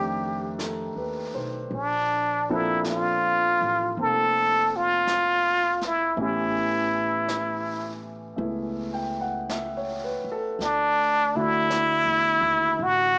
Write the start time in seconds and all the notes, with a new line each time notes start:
Already playing: F2 D#3 A3 C4 D4 G4
0.58 A4, brush sweep, snare, hi-hat pedal
0.96 D#2 B4
1.34 B1 C5
1.71 A#1 D4, brush sweep
2.49 F3 A#3 C4 D4 E4 A4
2.84 brush sweep, snare, hi-hat pedal
2.89 F4
3.61 A1
3.97 F1 A#3 C4 A4, brush sweep
4.76 F4
5.07 brush sweep, snare, hi-hat pedal
5.81 snare
5.86 E4
6.17 A1 E3 A3 B3 C#4, brush sweep
6.21 E4 G4
7.28 brush sweep, snare, hi-hat pedal
8.36 C#2 A3 B3 E4, brush sweep
8.93 G5
9.21 F#5
9.49 E5, brush sweep, snare, hi-hat pedal
9.77 C#5
10.04 B4
10.24 muted upright bass stroke
10.32 A4
10.59 D2 D4, brush sweep, snare
11.35 D3 A3 D4 E4 F#4
11.70 brush sweep, snare, hi-hat pedal
12.06 E2
12.41 D#2
12.79 A1, brush sweep
12.83 F#4